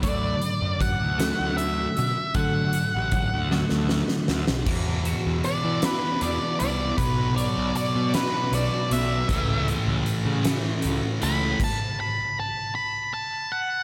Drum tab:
CC |------------|------------|x-----------|------------|
HH |x-x-x-x-x-x-|x-x-x-------|--x-x-x-x-x-|x-x-x-x-x-x-|
SD |------o-----|------oooooo|------o-----|------o-----|
BD |o---o-------|o---o-------|o-----------|o-----------|

CC |------------|x-----------|
HH |x-x-x-x-x-x-|------------|
SD |------o-----|------------|
BD |o-----------|o-----------|